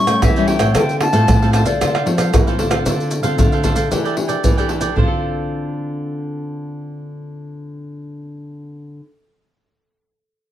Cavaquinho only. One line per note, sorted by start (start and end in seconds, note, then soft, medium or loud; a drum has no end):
0.07 0.35 A4 medium
0.07 0.34 C#5 medium
0.07 0.34 G5 medium
0.37 0.48 A4 medium
0.37 0.48 C#5 medium
0.37 0.48 G5 medium
0.48 0.61 G4 medium
0.48 0.60 A4 medium
0.48 0.60 C#5 medium
0.48 0.59 G5 medium
0.60 0.74 A4 medium
0.60 0.74 C#5 medium
0.60 0.73 G5 medium
0.75 1.00 D4 soft
0.75 1.00 A4 medium
0.75 1.01 C5 medium
0.75 1.01 F5 medium
1.01 muted cavaquinho stroke soft
1.13 1.27 A4 medium
1.13 1.26 C5 medium
1.13 1.26 F5 medium
1.28 1.40 D4 medium
1.28 1.41 A4 medium
1.28 1.41 C5 medium
1.28 1.41 F5 medium
1.42 1.53 A4 medium
1.42 1.54 C5 medium
1.42 1.54 F5 medium
1.54 1.66 D4 medium
1.54 1.66 A4 medium
1.54 1.65 C5 medium
1.54 1.64 F5 medium
1.65 1.79 A4 soft
1.65 1.79 C5 medium
1.65 1.78 F5 medium
1.81 1.93 D4 soft
1.81 1.93 A4 soft
1.81 1.93 C5 medium
1.81 1.93 F5 medium
1.95 2.05 A4 medium
1.95 2.05 C5 medium
1.95 2.06 F5 medium
2.06 muted cavaquinho stroke soft
2.18 2.45 A4 medium
2.18 2.45 C5 medium
2.18 2.44 F5 medium
2.47 2.58 A4 medium
2.47 2.58 C5 medium
2.47 2.59 F5 medium
2.58 2.71 D4 soft
2.58 2.71 A4 soft
2.58 2.70 C5 medium
2.58 2.69 F5 medium
2.70 2.85 A4 medium
2.70 2.84 C5 medium
2.70 2.84 F5 medium
2.86 3.10 D4 medium
2.86 3.10 A4 soft
2.86 3.10 C5 soft
2.86 3.11 F5 medium
3.11 muted cavaquinho stroke soft
3.23 3.37 A4 medium
3.23 3.37 C5 medium
3.23 3.36 F5 medium
3.38 3.50 D4 soft
3.38 3.51 A4 soft
3.38 3.51 C5 medium
3.38 3.51 F5 medium
3.52 3.63 A4 medium
3.52 3.63 C5 medium
3.52 3.64 F5 medium
3.64 3.76 D4 medium
3.64 3.76 A4 medium
3.64 3.75 C5 medium
3.64 3.74 F5 medium
3.75 3.90 A4 soft
3.75 3.89 C5 medium
3.75 3.89 F5 medium
3.91 4.03 D4 soft
3.91 4.03 A4 soft
3.91 4.04 D5 soft
3.91 4.03 G5 medium
4.05 4.15 A4 medium
4.05 4.15 D5 medium
4.05 4.16 G5 medium
4.16 muted cavaquinho stroke soft
4.28 4.56 A4 medium
4.28 4.55 D5 medium
4.28 4.55 G5 medium
4.57 4.68 A4 medium
4.57 4.69 D5 medium
4.57 4.69 G5 medium
4.68 4.81 D4 soft
4.68 4.81 A4 soft
4.68 4.81 D5 soft
4.68 4.80 G5 medium
4.81 4.95 A4 soft
4.81 4.95 D5 medium
4.81 4.94 G5 medium
4.96 9.03 D4 medium
4.96 9.04 A4 medium
4.96 9.05 C5 medium
4.96 9.06 F5 medium